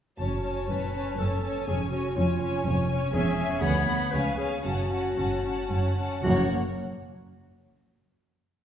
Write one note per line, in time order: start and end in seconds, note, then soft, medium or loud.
0.18 0.61 F#1 soft
0.18 0.60 F#2 soft
0.18 0.42 C#4 soft
0.18 0.70 F#4 soft
0.18 0.43 C#5 soft
0.18 0.42 A5 soft
0.43 0.67 C#4 soft
0.43 0.68 C#5 soft
0.43 0.66 A5 soft
0.67 1.10 F#1 soft
0.67 1.10 F#2 soft
0.67 0.93 C#4 soft
0.67 1.20 B4 medium
0.67 0.92 C#5 soft
0.67 0.92 A5 soft
0.93 1.18 C#4 soft
0.93 1.15 C#5 soft
0.93 1.17 A5 soft
1.16 1.60 F#1 soft
1.16 1.60 F#2 medium
1.16 1.43 C#4 soft
1.16 1.67 A4 medium
1.16 1.42 C#5 soft
1.16 1.42 A5 soft
1.43 1.67 C#4 soft
1.43 1.66 C#5 soft
1.43 1.67 A5 soft
1.67 2.08 F1 medium
1.67 2.09 F2 medium
1.67 1.91 C#4 soft
1.67 1.78 G#4 medium
1.67 1.91 C#5 soft
1.67 1.91 G#5 soft
1.90 2.16 C#4 soft
1.90 2.18 F#4 medium
1.90 2.16 C#5 soft
1.90 2.17 G#5 soft
2.16 2.57 F1 medium
2.16 2.57 F2 medium
2.16 2.40 C#4 soft
2.16 2.89 F4 medium
2.16 2.41 C#5 soft
2.16 2.41 G#5 soft
2.42 2.65 C#4 soft
2.42 2.66 C#5 soft
2.42 2.66 G#5 soft
2.66 3.06 F1 medium
2.66 3.06 F2 medium
2.66 2.89 C#4 soft
2.66 2.91 C#5 soft
2.66 2.88 G#5 soft
2.89 3.13 C#4 medium
2.89 3.15 C#5 soft
2.89 3.13 G#5 soft
3.12 3.55 E1 medium
3.12 3.55 E2 medium
3.12 3.38 C#4 medium
3.12 3.59 G#4 medium
3.12 3.39 E5 medium
3.12 3.38 G#5 medium
3.39 3.63 C#4 soft
3.39 3.64 E5 soft
3.39 3.63 G#5 medium
3.62 4.05 D2 medium
3.62 3.87 B3 medium
3.62 4.13 C#5 medium
3.62 3.87 F#5 medium
3.62 3.86 B5 medium
3.87 4.13 B3 medium
3.87 4.13 F#5 medium
3.87 4.13 B5 soft
4.11 4.56 C#2 medium
4.11 4.57 C#2 medium
4.11 4.37 C#4 soft
4.11 4.37 B4 medium
4.11 4.38 F5 soft
4.11 4.39 G#5 soft
4.37 4.63 C#4 soft
4.37 4.49 G#4 medium
4.37 4.65 F5 soft
4.37 4.65 G#5 soft
4.64 5.09 F#1 soft
4.64 5.09 F#2 medium
4.64 4.89 C#4 soft
4.64 5.94 F#4 medium
4.64 4.91 F#5 soft
4.64 4.91 A5 soft
4.91 5.16 C#4 soft
4.91 5.18 F#5 soft
4.91 5.18 A5 soft
5.17 5.62 F#1 soft
5.17 5.62 F#2 soft
5.17 5.43 C#4 soft
5.17 5.44 F#5 soft
5.17 5.43 A5 soft
5.44 5.70 C#4 soft
5.44 5.71 F#5 soft
5.44 5.69 A5 soft
5.70 6.15 F#1 soft
5.70 6.15 F#2 medium
5.70 5.97 C#4 soft
5.70 5.97 F#5 soft
5.70 5.96 A5 soft
5.98 6.24 C#4 soft
5.98 6.24 F#5 soft
5.98 6.24 A5 soft
6.23 6.53 F#1 medium
6.23 6.53 F#2 medium
6.23 6.53 A#3 medium
6.23 6.45 F#4 medium
6.23 6.53 F#5 medium
6.27 6.54 C#5 medium